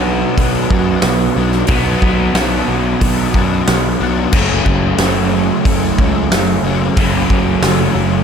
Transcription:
Already playing: picked electric bass B1, overdriven electric guitar B2 F#3 B3 D4
0.37 picked electric bass B1, overdriven electric guitar B2 F#3 B3 D4, kick, open hi-hat
0.70 picked electric bass F#2, overdriven electric guitar F#3 B3 D4, kick
1.02 picked electric bass B1, snare, open hi-hat
1.36 picked electric bass B1, overdriven electric guitar F#3 B3 D4
1.52 snare
1.67 picked electric bass B1, overdriven electric guitar B2 F#3, kick, open hi-hat
1.71 overdriven electric guitar B3 D4
2.02 picked electric bass B1, kick
2.34 picked electric bass B1, overdriven electric guitar B2 F#3 B3 D4, snare, open hi-hat
2.68 picked electric bass B1
3.00 picked electric bass B1, overdriven electric guitar B2 F#3 B3 D4, kick, open hi-hat
3.33 picked electric bass F#2, overdriven electric guitar F#3 B3 D4, kick
3.67 picked electric bass B1, snare, open hi-hat
4.00 picked electric bass B1, overdriven electric guitar F#3 B3 D4
4.33 picked electric bass F#1, overdriven electric guitar F#2 C#3 F#3 A3 C#4, kick, crash
4.66 picked electric bass F#1, kick
4.98 picked electric bass F#1, overdriven electric guitar C#3 F#3 A3, snare, open hi-hat
5.03 overdriven electric guitar C#4
5.65 picked electric bass F#1, overdriven electric guitar F#2 C#3 F#3 A3 C#4, kick, open hi-hat
5.98 picked electric bass C#2, overdriven electric guitar F#3 A3 C#4, kick
6.31 picked electric bass F#1, snare, open hi-hat
6.63 picked electric bass F#1, overdriven electric guitar A3 C#4
6.67 overdriven electric guitar F#3
6.97 picked electric bass F#1, overdriven electric guitar F#2 C#3 F#3 A3 C#4, kick, open hi-hat
7.30 picked electric bass F#1, kick
7.62 picked electric bass F#1, overdriven electric guitar C#3 F#3 A3 C#4, snare, open hi-hat
7.96 picked electric bass F#1

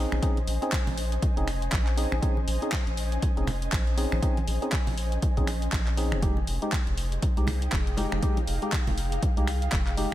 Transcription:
Already playing: synth stab C4 C#4 D#4 G#4, ambient pad C#4 C5 D#5 G#5
0.12 analog synth bass A#1, finger snap, high conga
0.22 synth stab C4 C#4 D#4 G#4, kick, closed hi-hat
0.37 closed hi-hat, high conga
0.47 analog synth bass A#1, open hi-hat
0.62 synth stab C4 C#4 D#4 G#4, closed hi-hat
0.72 kick, clap, closed hi-hat
0.87 analog synth bass A#1, open hi-hat, low conga
0.98 open hi-hat
1.12 closed hi-hat
1.22 kick, closed hi-hat
1.37 analog synth bass F1, synth stab C4 C#4 D#4 G#4, closed hi-hat
1.48 finger snap, open hi-hat
1.62 closed hi-hat
1.72 analog synth bass A#1, kick, clap, closed hi-hat
1.87 clap, closed hi-hat
1.97 synth stab C4 C#4 D#4 G#4, open hi-hat
2.12 analog synth bass A#1, finger snap, high conga
2.22 synth stab C4 C#4 D#4 G#4, kick, closed hi-hat
2.37 high conga
2.47 analog synth bass A#1, open hi-hat
2.62 synth stab C4 C#4 D#4 G#4, closed hi-hat
2.72 kick, clap, closed hi-hat
2.87 analog synth bass A#1, closed hi-hat
2.97 open hi-hat
3.12 closed hi-hat
3.22 kick, closed hi-hat
3.37 analog synth bass F1, synth stab C4 C#4 D#4 G#4, closed hi-hat
3.47 finger snap, open hi-hat, low conga
3.62 closed hi-hat
3.72 analog synth bass A#1, kick, clap, closed hi-hat
3.87 closed hi-hat
3.97 synth stab C4 C#4 D#4 G#4, open hi-hat
4.12 analog synth bass A#1, finger snap, high conga
4.22 synth stab C4 C#4 D#4 G#4, kick, closed hi-hat
4.37 closed hi-hat, high conga
4.47 analog synth bass A#1, open hi-hat
4.62 synth stab C4 C#4 D#4 G#4, closed hi-hat
4.72 kick, clap, closed hi-hat
4.87 analog synth bass A#1, open hi-hat, low conga
4.98 open hi-hat
5.12 closed hi-hat
5.22 kick, closed hi-hat
5.37 analog synth bass A#1, synth stab C4 C#4 D#4 G#4, kick, closed hi-hat, high conga
5.47 finger snap, open hi-hat
5.62 closed hi-hat
5.72 analog synth bass A#1, kick, clap, closed hi-hat
5.87 clap, closed hi-hat
5.97 synth stab C4 C#4 D#4 G#4, open hi-hat
6.12 analog synth bass F1, finger snap, high conga
6.22 synth stab G#3 D#4 G4, ambient pad D#4, kick, closed hi-hat
6.28 ambient pad G#4
6.37 high conga
6.47 analog synth bass F1, ambient pad G5, open hi-hat
6.62 synth stab G#3 D#4 G4, closed hi-hat
6.72 kick, clap, closed hi-hat
6.87 analog synth bass F1, ambient pad F5, closed hi-hat
6.98 open hi-hat
7.12 closed hi-hat
7.22 kick, closed hi-hat
7.37 analog synth bass C2, synth stab G#3 D#4 G4, closed hi-hat
7.47 finger snap, open hi-hat, high bongo, low conga
7.62 closed hi-hat
7.72 analog synth bass F1, kick, clap, closed hi-hat
7.87 closed hi-hat
7.97 synth stab G#3 D#4 G4, open hi-hat, high bongo
8.12 analog synth bass F1, finger snap, high conga
8.22 synth stab G#3 D#4 G4, kick, closed hi-hat
8.37 closed hi-hat, high bongo, high conga
8.47 analog synth bass F1, open hi-hat
8.62 synth stab G#3 D#4 G4, closed hi-hat
8.72 kick, clap, closed hi-hat
8.87 analog synth bass F1, open hi-hat, low conga
8.98 open hi-hat
9.12 closed hi-hat
9.23 kick, closed hi-hat
9.37 analog synth bass C2, synth stab G#3 D#4 G4, closed hi-hat
9.47 finger snap, open hi-hat
9.62 closed hi-hat
9.72 analog synth bass F1, kick, clap, closed hi-hat
9.87 clap, closed hi-hat
9.97 synth stab G#3 D#4 G4, open hi-hat

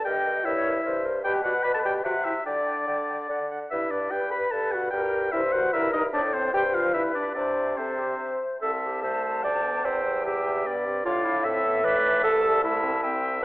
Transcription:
0.05 bassoon G2, french horn G4, clarinet A#4, flute D#5, oboe G5
0.25 clarinet A#4
0.44 bassoon G2, french horn E4, clarinet A#4, flute C#5, oboe E5
0.65 clarinet A#4
0.83 bassoon G2, clarinet A#4, flute C5
1.05 clarinet A#4
1.23 bassoon B2, french horn G4, flute B4, clarinet D5, oboe G5
1.44 french horn F#4, clarinet D5, oboe F#5
1.63 bassoon B2, french horn B4, clarinet D5, oboe B5
1.74 french horn A4, oboe A5
1.84 french horn G4, clarinet D5, oboe G5
2.03 bassoon C3, french horn F#4, flute E5, oboe F#5, clarinet G5
2.24 french horn E4, oboe E5, clarinet G5
2.46 bassoon D3, french horn D4, flute D5, oboe D5, clarinet G5
2.66 clarinet G5
2.87 bassoon D3, clarinet G5
3.09 clarinet G5
3.29 bassoon D3, clarinet F#5
3.51 clarinet F#5
3.70 bassoon G2, french horn E4, clarinet B4, oboe E5
3.91 french horn D4, clarinet B4, oboe D5
4.11 bassoon G2, french horn G4, clarinet B4, flute B4, oboe G5
4.31 french horn B4, clarinet B4, oboe B5
4.51 bassoon G2, french horn A4, clarinet B4, oboe A5
4.72 french horn F#4, clarinet B4, oboe F#5
4.90 bassoon G2, french horn G4, flute A#4, clarinet A#4, oboe G5
5.13 clarinet A#4
5.32 bassoon G2, french horn E4, clarinet A#4, flute C5, oboe E5
5.52 french horn F#4, clarinet A#4, oboe F#5
5.73 bassoon G2, french horn E4, flute A#4, clarinet A#4, oboe E5
5.93 french horn D#4, clarinet A#4, oboe D#5
6.12 bassoon A2, french horn D4, flute A4, clarinet C5, oboe D5
6.33 french horn C4, oboe C5
6.52 bassoon G2, french horn G4, flute C5, clarinet C5, oboe G5
6.73 french horn F4, oboe F5
6.93 bassoon G2, french horn E4, flute B4, clarinet B4, oboe E5
7.14 french horn D4, oboe D5
7.34 bassoon C3, french horn D4, flute C5, oboe D5, clarinet E5
7.77 french horn C4, flute A4, oboe C5, clarinet E5
7.98 flute G4
8.19 flute C5
8.61 bassoon C2, french horn C4, clarinet A4, oboe E5, flute A5
8.83 clarinet G4
9.02 french horn A3, clarinet C5, oboe E5
9.43 bassoon D2, french horn G3, clarinet D5, oboe G5
9.64 french horn B3
9.84 bassoon E2, french horn C4, clarinet C5, oboe E5, flute G5
10.04 french horn G3
10.25 clarinet G4, oboe E5
10.65 bassoon G2, french horn B3, oboe D5
10.85 french horn C4
11.05 bassoon A2, french horn D4, clarinet F4, oboe D5, flute F5
11.24 clarinet E4
11.44 french horn C4, clarinet A4, oboe E5, flute E5
11.65 french horn B3
11.84 french horn A3, clarinet B4, oboe D5
12.23 bassoon C2, french horn A3, clarinet A4, oboe E5, flute A5
12.44 french horn G3
12.64 french horn A3, clarinet E4, oboe E5, flute A5
12.83 french horn C4
13.03 french horn C4, oboe E5, flute G5
13.41 flute A5

